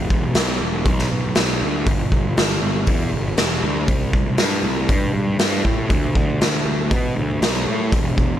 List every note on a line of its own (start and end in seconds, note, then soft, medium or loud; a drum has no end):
0.10 0.34 E1 medium
0.10 kick medium
0.35 0.60 B1 medium
0.35 snare medium
0.35 open hi-hat soft
0.61 0.85 E1 medium
0.85 1.10 B1 medium
0.85 kick loud
0.85 open hi-hat soft
0.99 snare soft
1.10 1.35 B1 medium
1.35 1.60 B1 medium
1.35 snare medium
1.35 open hi-hat soft
1.62 1.86 D2 medium
1.86 2.11 G1 medium
1.86 kick medium
1.86 open hi-hat soft
2.12 2.36 G1 medium
2.12 kick medium
2.37 2.61 G1 medium
2.37 snare medium
2.37 open hi-hat soft
2.62 2.86 G1 medium
2.87 3.11 E2 medium
2.87 kick loud
2.87 open hi-hat soft
3.12 3.37 G1 medium
3.37 3.62 E1 medium
3.37 snare medium
3.37 open hi-hat soft
3.63 3.88 D2 medium
3.88 4.12 C2 medium
3.88 kick loud
3.88 open hi-hat soft
4.13 4.38 C2 medium
4.13 kick medium
4.38 4.63 G2 medium
4.38 snare medium
4.38 open hi-hat soft
4.63 4.88 C2 medium
4.89 5.13 G2 medium
4.89 kick loud
4.89 open hi-hat soft
5.14 5.38 G2 medium
5.39 5.63 G2 medium
5.39 snare medium
5.39 open hi-hat soft
5.64 5.89 A2 medium
5.64 kick medium
5.90 6.14 D2 medium
5.90 kick loud
5.90 open hi-hat soft
6.15 6.40 D2 medium
6.15 kick medium
6.41 6.65 D2 medium
6.41 snare loud
6.41 open hi-hat soft
6.66 6.90 D2 medium
6.91 7.15 B2 medium
6.91 kick loud
6.91 open hi-hat soft
7.16 7.40 D2 medium
7.41 7.65 B1 medium
7.41 snare medium
7.41 open hi-hat soft
7.66 7.91 A2 medium
7.92 8.16 E1 medium
7.92 kick loud
7.92 open hi-hat soft
8.17 8.40 E1 medium
8.17 kick medium